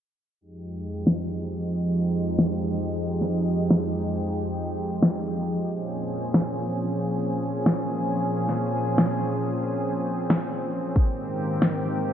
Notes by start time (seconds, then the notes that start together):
0.41 F2 F3 G#3 D#4 G4
1.07 snare
2.39 snare
3.21 snare
3.71 snare
5.03 snare
5.69 A#2 F3 C4 C#4 G#4
6.34 snare
7.66 snare
8.49 snare
8.98 snare
10.30 snare
10.96 G#2 D#3 A#3 G4, kick
11.62 snare